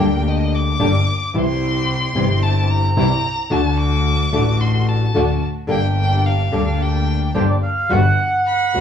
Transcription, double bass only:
0, 0, Header, 1, 2, 480
1, 0, Start_track
1, 0, Key_signature, -2, "minor"
1, 0, Tempo, 543971
1, 1190, Time_signature, 4, 2, 24, 8
1, 5506, Tempo, 554529
1, 7726, End_track
2, 0, Start_track
2, 0, Title_t, "Double bass"
2, 0, Program_c, 0, 43
2, 0, Note_on_c, 0, 38, 87
2, 676, Note_off_c, 0, 38, 0
2, 715, Note_on_c, 0, 31, 86
2, 914, Note_off_c, 0, 31, 0
2, 1195, Note_on_c, 0, 36, 92
2, 1873, Note_off_c, 0, 36, 0
2, 1910, Note_on_c, 0, 31, 89
2, 2585, Note_off_c, 0, 31, 0
2, 2621, Note_on_c, 0, 36, 86
2, 2822, Note_off_c, 0, 36, 0
2, 3103, Note_on_c, 0, 38, 103
2, 3787, Note_off_c, 0, 38, 0
2, 3823, Note_on_c, 0, 33, 97
2, 4508, Note_off_c, 0, 33, 0
2, 4543, Note_on_c, 0, 38, 91
2, 4745, Note_off_c, 0, 38, 0
2, 5028, Note_on_c, 0, 31, 89
2, 5709, Note_off_c, 0, 31, 0
2, 5745, Note_on_c, 0, 38, 86
2, 6430, Note_off_c, 0, 38, 0
2, 6475, Note_on_c, 0, 31, 75
2, 6674, Note_off_c, 0, 31, 0
2, 6957, Note_on_c, 0, 31, 96
2, 7152, Note_off_c, 0, 31, 0
2, 7681, Note_on_c, 0, 38, 61
2, 7726, Note_off_c, 0, 38, 0
2, 7726, End_track
0, 0, End_of_file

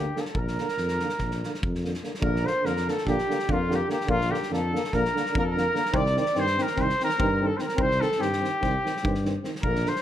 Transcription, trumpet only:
0, 0, Header, 1, 2, 480
1, 0, Start_track
1, 0, Key_signature, -2, "major"
1, 0, Tempo, 412371
1, 406, Time_signature, 9, 3, 24, 8
1, 11662, End_track
2, 0, Start_track
2, 0, Title_t, "Trumpet"
2, 0, Program_c, 0, 56
2, 0, Note_on_c, 0, 67, 88
2, 242, Note_on_c, 0, 69, 76
2, 259, Note_off_c, 0, 67, 0
2, 444, Note_on_c, 0, 70, 93
2, 462, Note_off_c, 0, 69, 0
2, 2165, Note_off_c, 0, 70, 0
2, 2582, Note_on_c, 0, 70, 99
2, 2876, Note_on_c, 0, 72, 105
2, 2893, Note_off_c, 0, 70, 0
2, 3088, Note_on_c, 0, 70, 100
2, 3105, Note_off_c, 0, 72, 0
2, 3375, Note_on_c, 0, 69, 95
2, 3392, Note_off_c, 0, 70, 0
2, 3584, Note_off_c, 0, 69, 0
2, 3592, Note_on_c, 0, 67, 99
2, 4094, Note_on_c, 0, 65, 97
2, 4112, Note_off_c, 0, 67, 0
2, 4363, Note_on_c, 0, 67, 98
2, 4380, Note_off_c, 0, 65, 0
2, 4546, Note_off_c, 0, 67, 0
2, 4553, Note_on_c, 0, 67, 101
2, 4767, Note_on_c, 0, 65, 122
2, 4785, Note_off_c, 0, 67, 0
2, 5013, Note_on_c, 0, 67, 102
2, 5031, Note_off_c, 0, 65, 0
2, 5237, Note_off_c, 0, 67, 0
2, 5281, Note_on_c, 0, 69, 108
2, 5747, Note_on_c, 0, 70, 110
2, 5765, Note_off_c, 0, 69, 0
2, 6231, Note_off_c, 0, 70, 0
2, 6266, Note_on_c, 0, 70, 117
2, 6303, Note_on_c, 0, 69, 97
2, 6321, Note_off_c, 0, 70, 0
2, 6403, Note_on_c, 0, 70, 122
2, 6420, Note_off_c, 0, 69, 0
2, 6921, Note_on_c, 0, 74, 112
2, 6939, Note_off_c, 0, 70, 0
2, 7181, Note_off_c, 0, 74, 0
2, 7198, Note_on_c, 0, 74, 105
2, 7442, Note_on_c, 0, 72, 119
2, 7459, Note_off_c, 0, 74, 0
2, 7708, Note_on_c, 0, 70, 104
2, 7725, Note_off_c, 0, 72, 0
2, 7929, Note_on_c, 0, 72, 110
2, 7946, Note_off_c, 0, 70, 0
2, 8176, Note_off_c, 0, 72, 0
2, 8198, Note_on_c, 0, 70, 111
2, 8686, Note_on_c, 0, 69, 101
2, 8704, Note_off_c, 0, 70, 0
2, 8812, Note_on_c, 0, 72, 82
2, 8830, Note_off_c, 0, 69, 0
2, 8864, Note_on_c, 0, 70, 101
2, 8882, Note_off_c, 0, 72, 0
2, 9086, Note_on_c, 0, 72, 127
2, 9104, Note_off_c, 0, 70, 0
2, 9319, Note_on_c, 0, 69, 112
2, 9337, Note_off_c, 0, 72, 0
2, 9550, Note_on_c, 0, 67, 102
2, 9568, Note_off_c, 0, 69, 0
2, 10990, Note_off_c, 0, 67, 0
2, 11206, Note_on_c, 0, 70, 109
2, 11500, Note_on_c, 0, 72, 99
2, 11517, Note_off_c, 0, 70, 0
2, 11662, Note_off_c, 0, 72, 0
2, 11662, End_track
0, 0, End_of_file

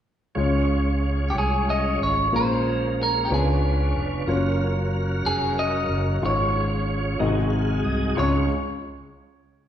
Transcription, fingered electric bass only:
0, 0, Header, 1, 2, 480
1, 0, Start_track
1, 0, Key_signature, -5, "major"
1, 0, Tempo, 650759
1, 272, Time_signature, 6, 3, 24, 8
1, 7142, End_track
2, 0, Start_track
2, 0, Title_t, "Fingered electric bass"
2, 0, Program_c, 0, 33
2, 269, Note_on_c, 0, 37, 67
2, 965, Note_off_c, 0, 37, 0
2, 996, Note_on_c, 0, 36, 72
2, 1448, Note_off_c, 0, 36, 0
2, 1477, Note_on_c, 0, 32, 63
2, 1698, Note_off_c, 0, 32, 0
2, 1717, Note_on_c, 0, 34, 73
2, 2409, Note_off_c, 0, 34, 0
2, 2440, Note_on_c, 0, 37, 85
2, 2890, Note_off_c, 0, 37, 0
2, 2915, Note_on_c, 0, 29, 69
2, 3137, Note_off_c, 0, 29, 0
2, 3152, Note_on_c, 0, 30, 81
2, 3845, Note_off_c, 0, 30, 0
2, 3877, Note_on_c, 0, 29, 67
2, 4327, Note_off_c, 0, 29, 0
2, 4346, Note_on_c, 0, 30, 77
2, 4571, Note_off_c, 0, 30, 0
2, 4589, Note_on_c, 0, 32, 76
2, 5281, Note_off_c, 0, 32, 0
2, 5312, Note_on_c, 0, 32, 83
2, 5762, Note_off_c, 0, 32, 0
2, 5789, Note_on_c, 0, 36, 73
2, 6011, Note_off_c, 0, 36, 0
2, 6033, Note_on_c, 0, 37, 71
2, 6255, Note_off_c, 0, 37, 0
2, 7142, End_track
0, 0, End_of_file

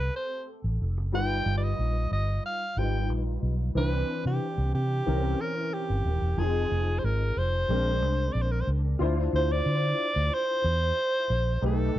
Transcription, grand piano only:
0, 0, Header, 1, 2, 480
1, 0, Start_track
1, 0, Tempo, 655738
1, 830, Time_signature, 4, 2, 24, 8
1, 8776, End_track
2, 0, Start_track
2, 0, Title_t, "Grand piano"
2, 0, Program_c, 0, 0
2, 0, Control_c, 0, 64, 127
2, 0, Note_on_c, 0, 57, 56
2, 0, Note_on_c, 0, 60, 54
2, 0, Note_on_c, 0, 67, 50
2, 0, Note_on_c, 0, 69, 63
2, 797, Note_off_c, 0, 57, 0
2, 801, Note_off_c, 0, 60, 0
2, 803, Note_off_c, 0, 67, 0
2, 806, Note_off_c, 0, 69, 0
2, 822, Note_on_c, 0, 55, 60
2, 826, Note_on_c, 0, 63, 51
2, 831, Note_on_c, 0, 65, 57
2, 837, Note_on_c, 0, 71, 66
2, 839, Control_c, 0, 64, 0
2, 981, Control_c, 0, 64, 127
2, 2003, Note_off_c, 0, 55, 0
2, 2005, Note_off_c, 0, 63, 0
2, 2007, Note_off_c, 0, 65, 0
2, 2011, Note_off_c, 0, 71, 0
2, 2033, Note_on_c, 0, 63, 44
2, 2034, Note_on_c, 0, 55, 47
2, 2038, Note_on_c, 0, 65, 44
2, 2043, Note_on_c, 0, 71, 50
2, 2744, Note_on_c, 0, 52, 58
2, 2749, Note_off_c, 0, 71, 0
2, 2750, Note_on_c, 0, 60, 55
2, 2753, Note_off_c, 0, 55, 0
2, 2753, Note_off_c, 0, 63, 0
2, 2754, Note_on_c, 0, 62, 53
2, 2755, Note_off_c, 0, 65, 0
2, 2760, Note_on_c, 0, 71, 66
2, 2761, Control_c, 0, 64, 0
2, 2876, Control_c, 0, 64, 127
2, 3689, Note_off_c, 0, 52, 0
2, 3692, Note_off_c, 0, 60, 0
2, 3694, Note_off_c, 0, 62, 0
2, 3697, Note_off_c, 0, 71, 0
2, 3704, Note_on_c, 0, 52, 57
2, 3709, Note_on_c, 0, 60, 57
2, 3717, Note_on_c, 0, 61, 53
2, 3722, Note_on_c, 0, 70, 69
2, 3723, Control_c, 0, 64, 0
2, 3830, Control_c, 0, 64, 127
2, 4649, Note_off_c, 0, 52, 0
2, 4652, Note_off_c, 0, 60, 0
2, 4656, Note_off_c, 0, 61, 0
2, 4659, Note_off_c, 0, 70, 0
2, 4662, Note_on_c, 0, 53, 58
2, 4669, Note_on_c, 0, 60, 54
2, 4676, Note_on_c, 0, 63, 54
2, 4681, Control_c, 0, 64, 0
2, 4682, Note_on_c, 0, 68, 67
2, 4804, Control_c, 0, 64, 127
2, 5608, Note_off_c, 0, 53, 0
2, 5612, Note_off_c, 0, 60, 0
2, 5615, Note_off_c, 0, 63, 0
2, 5619, Note_off_c, 0, 68, 0
2, 5623, Note_on_c, 0, 56, 61
2, 5630, Note_on_c, 0, 60, 53
2, 5634, Note_on_c, 0, 62, 58
2, 5639, Note_on_c, 0, 70, 65
2, 5641, Control_c, 0, 64, 0
2, 5787, Control_c, 0, 64, 127
2, 6568, Note_off_c, 0, 56, 0
2, 6572, Note_off_c, 0, 60, 0
2, 6574, Note_off_c, 0, 62, 0
2, 6577, Note_off_c, 0, 70, 0
2, 6581, Note_on_c, 0, 65, 74
2, 6588, Note_on_c, 0, 62, 60
2, 6594, Note_on_c, 0, 64, 68
2, 6599, Note_on_c, 0, 72, 80
2, 6603, Control_c, 0, 64, 0
2, 6714, Control_c, 0, 64, 127
2, 8476, Note_off_c, 0, 65, 0
2, 8479, Note_off_c, 0, 62, 0
2, 8483, Note_off_c, 0, 64, 0
2, 8485, Note_off_c, 0, 72, 0
2, 8502, Note_on_c, 0, 57, 61
2, 8506, Note_on_c, 0, 63, 56
2, 8514, Note_on_c, 0, 67, 54
2, 8518, Note_on_c, 0, 71, 67
2, 8519, Control_c, 0, 64, 0
2, 8645, Control_c, 0, 64, 127
2, 8776, Note_off_c, 0, 57, 0
2, 8776, Note_off_c, 0, 63, 0
2, 8776, Note_off_c, 0, 67, 0
2, 8776, Note_off_c, 0, 71, 0
2, 8776, End_track
0, 0, End_of_file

